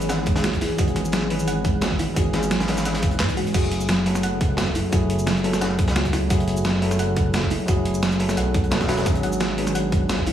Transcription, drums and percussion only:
0.02 closed hi-hat, shaker
0.09 snare, closed hi-hat, shaker
0.19 snare
0.26 kick, closed hi-hat
0.36 snare, closed hi-hat
0.44 snare, closed hi-hat, shaker
0.53 kick, closed hi-hat
0.61 snare, closed hi-hat, open hi-hat, shaker
0.78 kick, closed hi-hat, shaker
0.87 closed hi-hat
0.96 snare, closed hi-hat
1.05 shaker
1.12 snare, closed hi-hat, shaker
1.22 snare
1.30 closed hi-hat, open hi-hat
1.39 shaker
1.48 closed hi-hat, shaker
1.64 kick, closed hi-hat
1.81 snare, closed hi-hat, shaker
1.91 kick, snare
1.99 closed hi-hat, open hi-hat, shaker
2.16 kick, closed hi-hat, shaker
2.33 snare, closed hi-hat
2.43 closed hi-hat, shaker
2.51 snare, closed hi-hat, shaker
2.60 snare, closed hi-hat, shaker
2.68 snare, closed hi-hat, open hi-hat
2.77 snare, closed hi-hat, shaker
2.85 snare, closed hi-hat, shaker
2.93 snare, closed hi-hat
3.02 kick, closed hi-hat, shaker
3.11 closed hi-hat
3.20 snare, clap, closed hi-hat, shaker
3.28 kick, closed hi-hat, shaker
3.37 closed hi-hat, open hi-hat, shaker
3.47 closed hi-hat
3.54 kick, closed hi-hat, crash, shaker
3.64 closed hi-hat
3.72 closed hi-hat
3.81 shaker
3.89 snare, closed hi-hat, shaker
4.06 closed hi-hat, open hi-hat
4.15 snare, shaker
4.23 closed hi-hat, shaker
4.41 kick, closed hi-hat
4.57 snare, closed hi-hat, shaker
4.67 kick, snare
4.75 closed hi-hat, open hi-hat, shaker
4.93 kick, closed hi-hat, shaker
5.10 closed hi-hat
5.19 shaker
5.27 snare, closed hi-hat, shaker
5.37 closed hi-hat
5.44 closed hi-hat, open hi-hat
5.53 snare, closed hi-hat, shaker
5.61 snare, closed hi-hat, shaker
5.70 snare
5.79 kick, closed hi-hat
5.88 snare, closed hi-hat
5.96 snare, closed hi-hat, shaker
6.05 kick, closed hi-hat
6.13 snare, closed hi-hat, open hi-hat, shaker
6.30 kick, closed hi-hat, shaker
6.40 closed hi-hat
6.48 closed hi-hat
6.57 shaker
6.65 snare, closed hi-hat, shaker
6.82 closed hi-hat, open hi-hat
6.91 snare, shaker
6.99 closed hi-hat, shaker
7.16 kick, closed hi-hat
7.34 snare, closed hi-hat, shaker
7.43 kick, snare
7.50 closed hi-hat, open hi-hat, shaker
7.68 kick, closed hi-hat, shaker
7.85 closed hi-hat
7.94 shaker
8.03 snare, closed hi-hat, shaker
8.12 closed hi-hat, shaker
8.20 closed hi-hat, open hi-hat
8.29 snare, closed hi-hat, shaker
8.37 closed hi-hat, shaker
8.54 kick, closed hi-hat
8.64 closed hi-hat
8.71 snare, closed hi-hat, shaker
8.81 kick, snare, closed hi-hat
8.88 snare, closed hi-hat, open hi-hat, shaker
8.97 snare, closed hi-hat
9.06 kick, closed hi-hat, shaker
9.15 closed hi-hat
9.23 closed hi-hat
9.33 shaker
9.40 snare, closed hi-hat, shaker
9.58 closed hi-hat, open hi-hat
9.67 snare, shaker
9.75 closed hi-hat, shaker
9.92 kick, closed hi-hat
10.09 snare, closed hi-hat, shaker
10.19 kick, snare
10.26 closed hi-hat, open hi-hat, shaker

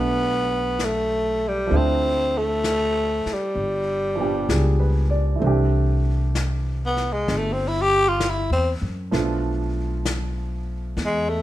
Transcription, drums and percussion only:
0.79 brush sweep, snare, hi-hat pedal
1.72 brush sweep
2.64 brush sweep, snare, hi-hat pedal
3.26 snare
3.57 brush sweep
4.49 brush sweep, snare, hi-hat pedal
5.42 brush sweep
6.35 brush sweep, snare, hi-hat pedal
6.97 snare
7.28 brush sweep, snare
8.20 brush sweep, snare, hi-hat pedal
9.13 brush sweep, snare
10.05 brush sweep, snare, hi-hat pedal
10.97 brush sweep, snare

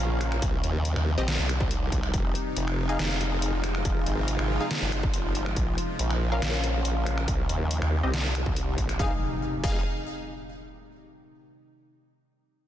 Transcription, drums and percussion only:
0.21 finger snap, closed hi-hat
0.32 finger snap
0.42 kick, closed hi-hat
0.64 closed hi-hat
0.85 closed hi-hat
0.96 finger snap
1.28 snare, closed hi-hat
1.49 finger snap, closed hi-hat
1.61 kick
1.71 closed hi-hat
1.92 kick, closed hi-hat
2.03 finger snap
2.14 kick, closed hi-hat
2.35 closed hi-hat
2.56 closed hi-hat
2.68 finger snap
2.99 snare, closed hi-hat
3.21 closed hi-hat
3.42 closed hi-hat
3.64 finger snap, closed hi-hat
3.75 finger snap
3.85 kick, closed hi-hat
4.06 closed hi-hat
4.28 closed hi-hat
4.39 finger snap
4.71 snare, closed hi-hat
4.92 finger snap, closed hi-hat
5.03 kick
5.14 closed hi-hat
5.35 closed hi-hat
5.46 finger snap
5.56 kick, closed hi-hat
5.78 closed hi-hat
5.99 closed hi-hat
6.11 finger snap
6.42 snare, closed hi-hat
6.64 closed hi-hat
6.85 closed hi-hat
7.06 finger snap, closed hi-hat
7.18 finger snap
7.28 kick, closed hi-hat
7.49 closed hi-hat
7.71 closed hi-hat
7.82 finger snap
8.14 snare, closed hi-hat
8.35 finger snap, closed hi-hat
8.46 kick
8.56 closed hi-hat
8.78 kick, closed hi-hat
8.89 finger snap, closed hi-hat
8.99 kick
9.64 kick

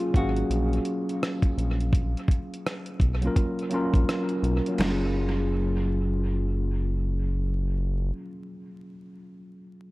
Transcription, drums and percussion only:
0.00 closed hi-hat
0.14 kick, closed hi-hat
0.36 closed hi-hat
0.51 closed hi-hat
0.73 closed hi-hat
0.85 closed hi-hat
1.09 closed hi-hat
1.23 cross-stick, closed hi-hat
1.42 kick, closed hi-hat
1.59 closed hi-hat
1.81 closed hi-hat
1.93 kick, closed hi-hat
2.17 closed hi-hat
2.28 kick, closed hi-hat
2.54 closed hi-hat
2.67 cross-stick, closed hi-hat
2.86 closed hi-hat
3.00 kick, closed hi-hat
3.22 closed hi-hat
3.36 kick, closed hi-hat
3.59 closed hi-hat
3.71 closed hi-hat
3.94 kick, closed hi-hat
4.09 cross-stick, closed hi-hat
4.29 closed hi-hat
4.44 closed hi-hat
4.66 closed hi-hat
4.78 snare, crash

